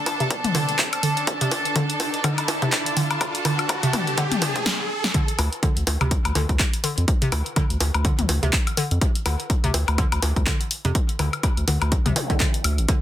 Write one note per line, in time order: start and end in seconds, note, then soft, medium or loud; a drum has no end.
0.00 4.66 D4 medium
0.00 4.66 A4 medium
0.00 4.66 A5 medium
0.00 riser medium
0.06 open hi-hat medium
0.06 high bongo medium
0.06 low woodblock medium
0.20 0.27 C3 loud
0.20 closed hi-hat soft
0.30 kick loud
0.30 closed hi-hat medium
0.44 closed hi-hat soft
0.44 mid tom medium
0.55 0.61 D3 loud
0.55 open hi-hat medium
0.55 high bongo medium
0.69 closed hi-hat soft
0.79 kick loud
0.79 clap loud
0.79 closed hi-hat medium
0.93 closed hi-hat soft
0.93 high woodblock medium
1.03 1.12 D3 medium
1.03 open hi-hat medium
1.17 closed hi-hat soft
1.27 kick loud
1.27 closed hi-hat medium
1.41 1.48 C3 loud
1.41 closed hi-hat soft
1.51 open hi-hat medium
1.51 high bongo medium
1.65 closed hi-hat soft
1.76 1.82 D3 loud
1.76 kick loud
1.76 closed hi-hat medium
1.90 closed hi-hat soft
2.00 open hi-hat medium
2.00 high bongo medium
2.14 closed hi-hat soft
2.24 2.33 D3 medium
2.24 kick loud
2.24 closed hi-hat medium
2.24 high woodblock medium
2.38 closed hi-hat soft
2.38 low woodblock medium
2.48 open hi-hat medium
2.48 high bongo medium
2.62 2.69 C3 loud
2.62 kick medium
2.62 closed hi-hat soft
2.72 kick loud
2.72 clap loud
2.72 closed hi-hat medium
2.86 closed hi-hat soft
2.97 3.03 D3 loud
2.97 open hi-hat medium
3.11 closed hi-hat soft
3.11 low woodblock medium
3.21 kick loud
3.21 closed hi-hat medium
3.21 low woodblock medium
3.35 closed hi-hat soft
3.45 3.54 D3 medium
3.45 open hi-hat medium
3.45 high bongo medium
3.45 low woodblock medium
3.59 closed hi-hat soft
3.59 high woodblock medium
3.69 kick loud
3.69 closed hi-hat medium
3.69 low woodblock medium
3.83 3.90 C3 loud
3.83 closed hi-hat soft
3.93 open hi-hat medium
3.93 mid tom medium
3.93 high bongo medium
3.93 low woodblock medium
4.07 closed hi-hat soft
4.18 4.24 D3 loud
4.18 kick loud
4.18 closed hi-hat medium
4.32 closed hi-hat soft
4.32 mid tom medium
4.42 open hi-hat medium
4.42 high bongo medium
4.56 kick medium
4.56 closed hi-hat soft
4.66 snare loud
5.04 snare medium
5.14 5.20 D3 loud
5.14 kick loud
5.14 closed hi-hat medium
5.28 closed hi-hat soft
5.39 5.49 D2 loud
5.39 open hi-hat medium
5.39 high bongo medium
5.39 low woodblock medium
5.53 closed hi-hat soft
5.63 5.72 D3 medium
5.63 kick loud
5.63 closed hi-hat medium
5.77 5.84 D2 medium
5.77 closed hi-hat soft
5.87 5.97 D2 medium
5.87 open hi-hat loud
5.87 high bongo medium
6.01 6.18 D2 medium
6.01 6.07 C3 loud
6.01 closed hi-hat soft
6.01 high woodblock medium
6.01 low woodblock medium
6.11 kick loud
6.11 closed hi-hat medium
6.25 6.33 D2 medium
6.25 closed hi-hat soft
6.25 low woodblock medium
6.35 6.46 D2 loud
6.35 6.41 D3 loud
6.35 open hi-hat medium
6.35 high bongo medium
6.49 6.57 D2 medium
6.49 kick medium
6.49 closed hi-hat soft
6.60 kick loud
6.60 clap loud
6.60 closed hi-hat medium
6.73 closed hi-hat soft
6.84 6.93 D3 medium
6.84 open hi-hat medium
6.98 7.05 F2 loud
6.98 closed hi-hat soft
7.08 kick loud
7.08 closed hi-hat medium
7.22 7.28 C3 loud
7.22 closed hi-hat soft
7.32 7.42 D2 loud
7.32 open hi-hat medium
7.32 high bongo medium
7.32 high woodblock medium
7.32 low woodblock medium
7.46 closed hi-hat soft
7.56 7.62 D3 loud
7.56 kick loud
7.56 closed hi-hat medium
7.56 low woodblock medium
7.70 7.78 D2 medium
7.70 closed hi-hat soft
7.80 7.91 D2 medium
7.80 open hi-hat loud
7.80 high bongo medium
7.94 8.11 D2 medium
7.94 closed hi-hat soft
7.94 low woodblock medium
8.05 8.14 D3 medium
8.05 kick loud
8.05 closed hi-hat medium
8.19 8.26 D2 medium
8.19 closed hi-hat soft
8.19 mid tom medium
8.29 8.39 D2 loud
8.29 open hi-hat medium
8.29 high bongo medium
8.43 8.50 D2 medium
8.43 8.49 C3 loud
8.43 closed hi-hat soft
8.53 kick loud
8.53 clap loud
8.53 closed hi-hat medium
8.67 closed hi-hat soft
8.67 high woodblock medium
8.77 8.83 D3 loud
8.77 open hi-hat medium
8.91 8.99 F2 loud
8.91 closed hi-hat soft
9.01 kick loud
9.01 closed hi-hat medium
9.15 closed hi-hat soft
9.26 9.36 D2 loud
9.26 9.35 D3 medium
9.26 open hi-hat loud
9.26 high bongo medium
9.26 low woodblock medium
9.40 closed hi-hat soft
9.50 kick loud
9.50 closed hi-hat medium
9.64 9.71 D2 medium
9.64 9.70 C3 loud
9.64 closed hi-hat soft
9.74 9.84 D2 medium
9.74 open hi-hat loud
9.74 high bongo medium
9.88 10.05 D2 medium
9.88 closed hi-hat soft
9.88 low woodblock medium
9.98 10.04 D3 loud
9.98 kick loud
9.98 closed hi-hat medium
9.98 high woodblock medium
10.12 10.20 D2 medium
10.12 closed hi-hat soft
10.12 low woodblock medium
10.22 10.33 D2 loud
10.22 open hi-hat loud
10.22 high bongo medium
10.36 10.44 D2 medium
10.36 kick medium
10.36 closed hi-hat soft
10.47 10.56 D3 medium
10.47 kick loud
10.47 clap loud
10.47 closed hi-hat medium
10.61 closed hi-hat soft
10.71 open hi-hat medium
10.85 10.92 F2 loud
10.85 10.91 C3 loud
10.85 closed hi-hat soft
10.95 kick loud
10.95 closed hi-hat medium
11.09 closed hi-hat soft
11.19 11.29 D2 loud
11.19 11.25 D3 loud
11.19 open hi-hat loud
11.19 high bongo medium
11.19 low woodblock medium
11.33 closed hi-hat soft
11.33 high woodblock medium
11.43 kick loud
11.43 closed hi-hat medium
11.43 low woodblock medium
11.57 11.65 D2 medium
11.57 closed hi-hat soft
11.68 11.78 D2 medium
11.68 11.76 D3 medium
11.68 open hi-hat loud
11.68 high bongo medium
11.82 11.98 D2 medium
11.82 closed hi-hat soft
11.82 low woodblock medium
11.92 kick loud
11.92 closed hi-hat medium
12.06 12.13 D2 medium
12.06 12.12 C3 loud
12.06 closed hi-hat soft
12.06 mid tom medium
12.16 open hi-hat medium
12.16 zap medium
12.16 high bongo medium
12.30 12.33 D3 medium
12.30 kick medium
12.30 closed hi-hat soft
12.40 12.44 D3 medium
12.40 kick loud
12.40 clap loud
12.40 closed hi-hat medium
12.54 closed hi-hat soft
12.64 12.80 D2 medium
12.64 open hi-hat loud
12.64 high woodblock medium
12.78 12.86 A1 loud
12.78 closed hi-hat soft
12.89 12.97 D3 medium
12.89 kick loud
12.89 closed hi-hat medium